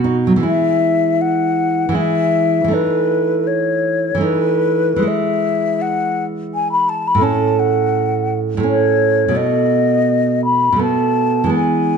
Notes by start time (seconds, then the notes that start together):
Already playing: B2 F#4
0.04 D#4
0.27 F#3
0.36 E3 G#3
0.43 E4 E5
1.21 F#5
1.89 E3 G#3
1.95 E4 E5
2.64 E3 A3
2.71 D#4 B4
3.47 C#5
4.15 E3 A3
4.21 D#4 B4
4.96 E3 G#3
5.03 E4
5.08 E5
5.82 F#5
6.54 G#5
6.72 B5
6.89 A5
7.07 B5
7.15 A2 A3
7.21 C#4 A5
7.59 F#5
8.57 A2 A3
8.63 C#4 C#5
9.28 B2 A3
9.35 B3 D#5
10.45 B5
10.72 B2 A3
10.79 B3 A5
11.44 E3 G#3
11.49 B3
11.54 G#5